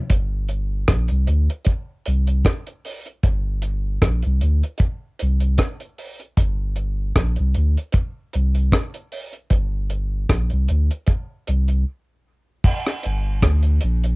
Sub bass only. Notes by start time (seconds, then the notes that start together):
0.11 G1
0.89 A#1
1.11 C2
1.28 D2
2.07 C2
3.24 G1
4.02 A#1
4.26 C2
4.42 D2
5.22 C2
6.38 G1
7.16 A#1
7.40 C2
7.57 D2
8.35 C2
9.52 G1
10.30 A#1
10.53 C2
10.70 D2
11.48 C2
13.06 G1
13.43 D2
13.83 A#1